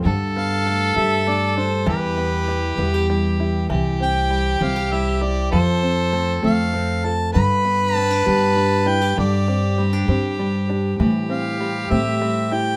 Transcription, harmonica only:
0.37 0.98 F5 medium
0.96 1.30 E5 medium
1.28 1.57 D5 medium
1.57 1.85 C5 medium
1.89 3.06 B4 medium
4.02 4.64 G5 medium
4.63 4.93 F5 medium
4.92 5.24 E5 medium
5.22 5.51 D5 medium
5.51 6.39 C5 medium
6.44 7.07 F5 medium
7.05 7.32 A5 medium
7.33 7.96 B5 loud
7.96 8.28 A5 loud
8.28 8.89 A5 medium
8.88 9.18 G5 medium
9.19 9.83 D5 medium
11.31 11.92 F5 medium
11.90 12.55 E5 medium
12.53 12.77 G5 medium

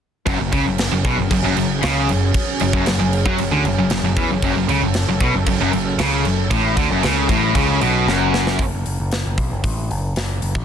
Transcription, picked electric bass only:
0.27 0.39 F#1 medium
0.40 0.52 F#1 medium
0.53 0.65 C#2 medium
0.66 0.90 F#1 medium
0.92 1.04 F#1 medium
1.04 1.17 B1 medium
1.18 1.30 F#1 medium
1.31 1.43 F#1 medium
1.44 1.56 F#1 loud
1.58 1.82 F#1 medium
1.84 2.08 C#2 loud
2.10 2.34 F#1 medium
2.62 2.73 F#1 medium
2.74 2.86 F#1 loud
2.87 2.99 F#1 medium
3.00 3.25 F#1 medium
3.26 3.38 F#2 loud
3.38 3.51 F#1 medium
3.51 3.63 D2 loud
3.64 3.76 F#1 medium
3.77 3.89 F#1 medium
3.90 4.03 F#1 medium
4.03 4.16 F#1 medium
4.17 4.29 E2 loud
4.30 4.42 F#1 medium
4.42 4.55 F#1 loud
4.55 4.67 F#1 medium
4.68 4.81 C#2 medium
4.81 5.06 F#1 medium
5.08 5.20 F#1 medium
5.21 5.33 B1 medium
5.34 5.46 F#1 medium
5.47 5.59 F#1 medium
5.60 5.72 F#1 medium
5.73 5.97 F#1 medium
6.00 6.24 C#2 loud
6.25 6.50 F#1 medium
6.51 6.75 A1 loud
6.77 6.89 D2 medium
6.90 7.03 F#1 loud
7.04 7.28 C#2 medium
7.29 7.54 A1 medium
7.55 7.80 C#2 loud
7.81 8.06 B1 medium
8.07 8.56 F#1 loud
8.59 8.72 F#1 medium
8.74 8.85 F#1 medium
8.87 8.98 F#1 medium
9.00 9.24 F#1 medium
9.25 9.37 F#1 medium
9.38 9.50 B1 medium
9.52 9.63 F#1 medium
9.64 9.88 A1 medium
9.90 10.14 F#1 medium
10.16 10.41 F#1 medium
10.43 10.55 F#1 medium
10.55 10.65 A1 medium

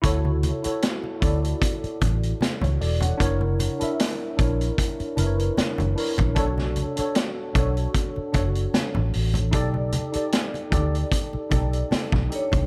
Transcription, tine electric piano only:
0.02 0.50 E4 loud
0.02 0.50 F#4 medium
0.02 0.51 A4 medium
0.02 0.51 C#5 loud
0.62 1.09 E4 medium
0.62 1.10 F#4 medium
0.62 1.11 A4 medium
0.62 1.11 C#5 medium
1.20 1.85 E4 medium
1.20 1.85 F#4 medium
1.20 1.86 A4 medium
1.24 1.87 D5 medium
2.62 2.80 F#4 soft
2.62 2.80 C#5 medium
2.81 3.01 A4 medium
2.81 3.01 D5 medium
3.02 3.20 C#5 soft
3.02 3.40 F#5 medium
3.18 3.66 D4 loud
3.18 3.67 E4 medium
3.18 3.67 A#4 medium
3.18 3.68 C#5 loud
3.79 4.26 D4 medium
3.79 4.27 E4 medium
3.79 4.27 A#4 medium
3.79 4.28 E5 medium
4.37 5.01 D4 medium
4.37 5.02 E4 medium
4.37 5.02 A#4 medium
4.37 5.03 C#5 medium
5.16 5.80 D4 medium
5.16 5.81 E4 medium
5.16 5.82 A#4 medium
5.20 5.26 B4 medium
5.26 5.86 C#5 medium
5.96 6.28 D4 medium
5.96 6.29 E4 medium
5.96 6.29 A#4 medium
6.00 6.30 C#5 medium
6.35 6.83 D4 loud
6.35 6.83 F#4 medium
6.35 6.84 A4 loud
6.35 6.85 C#5 loud
6.96 7.43 D4 medium
6.96 7.43 F#4 medium
6.96 7.44 A4 medium
6.96 7.45 C#5 medium
7.54 8.18 D4 medium
7.54 8.19 F#4 medium
7.54 8.19 A4 medium
7.54 8.20 C#5 medium
8.32 9.27 D4 medium
8.32 9.28 F#4 medium
8.32 9.29 A4 medium
8.32 9.29 C#5 medium
9.51 9.99 D#4 loud
9.51 10.00 G4 medium
9.51 10.01 A4 medium
9.51 10.01 D5 loud
10.12 10.59 D#4 medium
10.12 10.60 G4 medium
10.12 10.60 A4 medium
10.12 10.61 D5 medium
10.70 11.35 D#4 medium
10.70 11.35 G4 medium
10.70 11.36 A4 medium
10.70 11.37 D5 medium
11.50 12.14 D#4 medium
11.50 12.15 G4 medium
11.50 12.15 A4 medium
11.50 12.16 D5 medium
12.29 12.64 D4 medium
12.29 12.62 D#4 medium
12.29 12.62 G4 medium
12.29 12.63 A4 medium

